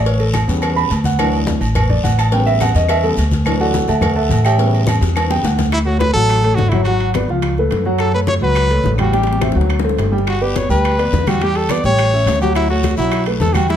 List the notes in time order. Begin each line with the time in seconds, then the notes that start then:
Already playing: A1
0.02 C5
0.06 C#5, cowbell, high conga, long guiro
0.20 A4, high conga, low agogo
0.34 cowbell, high conga, low agogo, short guiro, claves
0.47 E2 C#3 G3 B3, cowbell, high conga, short guiro
0.62 cowbell, high conga, low agogo, long guiro, claves
0.76 B5, high conga, low agogo
0.90 D2 A5, cowbell, high conga, low agogo, short guiro
1.04 F#5, cowbell, high conga, short guiro
1.19 E3 F#3 D4, cowbell, high conga, low agogo, long guiro, claves
1.33 high conga, low agogo
1.47 cowbell, high conga, short guiro
1.61 A1, high conga, low agogo, short guiro
1.75 cowbell, high conga, low conga, low agogo, long guiro, claves
1.89 D5, high conga, low conga
2.03 A1 F#5, cowbell, high conga, low agogo, short guiro
2.18 A5, cowbell, high conga, low agogo, short guiro, claves
2.32 C#3 G3 B3 G5, cowbell, high conga, long guiro
2.46 E5, high conga, low agogo
2.61 F#5, cowbell, high conga, low agogo, short guiro, claves
2.74 E2 D#5, cowbell, high conga, short guiro
2.89 E5, cowbell, high conga, low agogo, long guiro, claves
3.03 C#3 G3 B3 A4, high conga, low agogo
3.16 D2, cowbell, high conga, low agogo, short guiro
3.31 cowbell, high conga, short guiro
3.45 E3 F#3 D4, cowbell, high conga, low agogo, long guiro, claves
3.60 F#4 A4 D5 F#5, high conga, low agogo
3.74 cowbell, high conga, short guiro
3.88 D2 A4 E5 F#5 A5, high conga, low agogo, short guiro
4.01 cowbell, high conga, low conga, low agogo, long guiro, claves
4.16 A4 E5 F#5 A5, high conga
4.29 A1, cowbell, high conga, low agogo, short guiro
4.44 G4 C#5 E5 G5, cowbell, high conga, low agogo, short guiro, claves
4.58 C#3 G3 B3, cowbell, high conga, long guiro
4.72 high conga, low agogo
4.87 cowbell, high conga, low agogo, short guiro, claves
5.01 E2, cowbell, high bongo, high conga, short guiro
5.16 cowbell, low bongo, high conga, low agogo, long guiro, claves
5.30 C#3 G3 B3 G5, high bongo, high conga, low agogo
5.43 D2 F#5, cowbell, low bongo, high conga, low agogo, short guiro
5.58 cowbell, low bongo, high conga, short guiro
5.72 E4, high bongo, high timbale, claves
5.85 A3 F#4 A4 C#5, high conga
5.99 B4, high bongo, high conga, high timbale
6.13 A1 F#3 F#4 A4 F#5, high bongo, high conga
6.29 high bongo, high conga, high timbale, claves
6.43 A3 A4 C#5, high bongo, high conga, high timbale
6.55 G#1 F#4, high bongo, low bongo, high conga, low timbale
6.69 F#3 E4 F#4, high conga, high timbale, claves
6.73 F#5
6.84 F#3 F#4, high bongo, high conga, high timbale
6.88 F#5
7.00 high bongo, high conga, high timbale
7.14 B3 B4 D5, high bongo, high conga, high timbale, claves
7.28 C#2 F3 F4 F5, high bongo, high conga
7.42 high bongo, high conga, high timbale, claves
7.57 A3 A4 B4, high bongo, high conga
7.71 F#2, high bongo, low bongo, high conga, high timbale
7.85 F#3 F#4 F#5, high conga
7.98 A4, high bongo, high conga, high timbale, claves
8.13 A3 A4 B4 C#5, high bongo, high conga
8.27 C#5, high bongo, high conga, high timbale
8.41 C#2 F#3 F#4 B4 F#5, high bongo, high conga
8.55 high bongo, high timbale, claves
8.69 A3 A4 C#5, high bongo, high conga, high timbale
8.84 A1, high bongo, low bongo, high conga, low timbale
8.98 G3 F#4 G4 G5, high conga, high timbale, claves
9.13 G3 G4 G5, high bongo, high timbale
9.23 high bongo, high timbale
9.28 high conga
9.33 high bongo
9.41 C4 C5 E5, high bongo, high conga, high timbale, claves
9.52 D2 F#3 F#4 F#5, low bongo
9.57 high conga
9.61 low bongo
9.70 high conga, high timbale, claves
9.80 low bongo
9.84 A3 A4 C5, high conga
9.89 low bongo
9.97 G1, low bongo, high conga, high timbale, low timbale
10.12 G3 G4 G5, high conga
10.18 low bongo
10.27 F#4, high bongo, high conga, high timbale, long guiro, claves
10.41 B3 G4 B4 D5, high bongo, high conga
10.56 C#5, high bongo, high conga, high timbale, short guiro
10.69 D2 G3 G4 B4 G5, high bongo, short guiro
10.84 high bongo, high conga, high timbale, long guiro, claves
10.98 B3 B4 D5, high bongo, high conga, high timbale
11.13 E2, high bongo, low bongo, high conga, short guiro
11.27 G3 F#4 G4 G5, high conga, high timbale, short guiro, claves
11.41 G3 G4 G5, high bongo, high conga, high timbale, long guiro
11.55 A4, high bongo, high conga, high timbale
11.69 B3 B4 D5, high bongo, high conga, high timbale, short guiro, claves
11.84 A1 G3 G4 C#5 G5, high bongo, high conga, short guiro
11.98 high bongo, high conga, high timbale, long guiro, claves
12.12 C#4 C#5 E5, high bongo, high conga
12.26 D2, high bongo, low bongo, high conga, high timbale, low timbale, short guiro
12.41 F#3 F#4 G4 F#5, high conga, short guiro
12.55 E4, high bongo, high conga, high timbale, long guiro, claves
12.69 A3 F#4 A4 C#5, high bongo, high conga
12.83 high bongo, high conga, high timbale, short guiro
12.97 B1 F#3 E4 F#4 F#5, high bongo, high conga, short guiro
13.12 high bongo, high conga, high timbale, long guiro, claves
13.26 A3 A4 B4, high bongo, high conga, high timbale
13.40 E2 A4, high bongo, low bongo, high conga, low timbale, short guiro
13.54 G3 F#4 G4 G5, high conga, high timbale, short guiro, claves
13.68 G3 E4 G4 G5, high bongo, high conga, high timbale, long guiro